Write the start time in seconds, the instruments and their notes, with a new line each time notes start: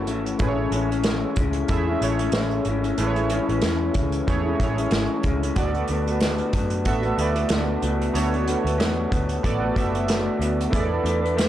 Already playing: synth keys A3 E4 F#4 C#5
0.07 picked electric bass G#1, clean electric guitar C#3 E3 A3, closed hi-hat
0.11 clean electric guitar E4
0.26 closed hi-hat
0.39 picked electric bass A1, clean electric guitar A2 E3 G#3 C#4 E4, synth keys A3 E4 G#4 B4, kick, closed hi-hat
0.48 synth keys C#5
0.57 clean electric guitar G#3 C#4 E4
0.71 picked electric bass A1, clean electric guitar E3 G#3 C#4 E4, closed hi-hat
0.89 clean electric guitar G#3 C#4 E4, closed hi-hat
1.03 clean electric guitar A2 E3 G#3 C#4 E4, snare, closed hi-hat
1.36 picked electric bass C#2, clean electric guitar E3 G#3 C#4 E4, kick, closed hi-hat
1.53 closed hi-hat
1.68 picked electric bass E2, synth keys A3 E4 G#4 E5, kick, closed hi-hat
1.87 clean electric guitar G#3 C#4 E4
2.01 picked electric bass A1, clean electric guitar E3 G#3 C#4 E4, synth keys A3 E4 G#4 C#5, closed hi-hat
2.19 clean electric guitar G#3 C#4 E4, closed hi-hat
2.32 picked electric bass A1, clean electric guitar A2 E3 G#3 C#4 E4, snare, closed hi-hat
2.51 closed hi-hat
2.65 picked electric bass G#1, clean electric guitar E3 G#3 C#4, closed hi-hat
2.69 clean electric guitar E4
2.83 clean electric guitar G#3 C#4 E4, closed hi-hat
2.97 picked electric bass A1, clean electric guitar A2 E3 G#3 C#4 E4, synth keys A3 E4 G#4 B4, closed hi-hat
3.07 synth keys C#5
3.15 clean electric guitar G#3 C#4 E4, closed hi-hat
3.30 clean electric guitar E3 G#3 C#4, closed hi-hat
3.34 clean electric guitar E4
3.48 picked electric bass A1, clean electric guitar G#3 C#4 E4, closed hi-hat
3.61 picked electric bass E2, clean electric guitar A2 E3 G#3 C#4 E4, snare, closed hi-hat
3.94 picked electric bass C#2, clean electric guitar E3 G#3 C#4 E4, kick, closed hi-hat
4.12 closed hi-hat
4.27 picked electric bass E2, synth keys A3 E4 G#4 C#5, kick, closed hi-hat
4.46 clean electric guitar G#3 C#4 E4
4.60 picked electric bass A1, clean electric guitar E3 G#3 C#4 E4, synth keys A3 E4 G#4 C#5, kick, closed hi-hat
4.76 clean electric guitar G#3 C#4 E4, closed hi-hat
4.91 picked electric bass G#1, clean electric guitar A2 E3 G#3 C#4 E4, snare, closed hi-hat
5.23 picked electric bass C#2, clean electric guitar E3 G#3 C#4, kick, closed hi-hat
5.27 clean electric guitar E4
5.41 clean electric guitar G#3 C#4 E4, closed hi-hat
5.56 picked electric bass D2, clean electric guitar D3 A3 B3 F#4, synth keys B3 F#4 A4 D5, kick, closed hi-hat
5.74 clean electric guitar A3 B3 F#4, closed hi-hat
5.88 picked electric bass D2, clean electric guitar D3 A3 B3, closed hi-hat
5.92 clean electric guitar F#4
6.07 clean electric guitar A3 B3 F#4, closed hi-hat
6.20 clean electric guitar D3 A3 B3 F#4, snare, closed hi-hat
6.38 closed hi-hat
6.53 picked electric bass F#2, clean electric guitar D3 A3 B3 F#4, kick, closed hi-hat
6.70 closed hi-hat
6.85 picked electric bass A1, synth keys B3 F#4 A4 E5, kick, closed hi-hat
7.02 clean electric guitar A3 B3 F#4, closed hi-hat
7.17 picked electric bass D2, clean electric guitar D3 A3 B3 F#4, synth keys B3 E4 A4 D5, closed hi-hat
7.25 synth keys F#4
7.34 clean electric guitar B3 F#4, closed hi-hat
7.38 clean electric guitar A3
7.49 picked electric bass D2, clean electric guitar D3 A3 B3 F#4, snare, closed hi-hat
7.82 picked electric bass C#2, clean electric guitar A3 B3 F#4, closed hi-hat
8.02 closed hi-hat
8.13 picked electric bass D2, clean electric guitar D3 A3 B3 F#4, synth keys B3 F#4 A4 C#5, closed hi-hat
8.32 clean electric guitar A3 B3 F#4, closed hi-hat
8.45 clean electric guitar D3 A3 B3 F#4, closed hi-hat
8.63 picked electric bass D2, clean electric guitar A3 B3 F#4, closed hi-hat
8.78 picked electric bass E2, clean electric guitar D3 A3 B3 F#4, snare, closed hi-hat
9.09 picked electric bass D2, clean electric guitar D3 A3 B3 F#4, kick, closed hi-hat
9.29 closed hi-hat
9.43 picked electric bass A1, synth keys B3 F#4 A4 D5, kick, closed hi-hat
9.59 clean electric guitar A3 B3 F#4
9.74 picked electric bass F#1, clean electric guitar D3 A3 B3 F#4, synth keys B3 F#4 A4 E5, kick, closed hi-hat
9.92 clean electric guitar A3 B3 F#4, closed hi-hat
10.06 clean electric guitar D3 A3 B3 F#4, snare, closed hi-hat
10.38 picked electric bass D2, clean electric guitar D3 A3 B3 F#4, closed hi-hat
10.61 closed hi-hat
10.70 picked electric bass E2, clean electric guitar E3 A3 D4 A4 B4, synth keys B3 E4 G#4 D5, kick, closed hi-hat
10.80 synth keys A4
10.88 clean electric guitar D4 A4 B4
11.03 picked electric bass E2, clean electric guitar A3 D4 A4 B4, closed hi-hat
11.21 clean electric guitar D4 A4 B4
11.26 closed hi-hat
11.35 clean electric guitar E3 A3 D4 A4 B4, closed hi-hat
11.39 snare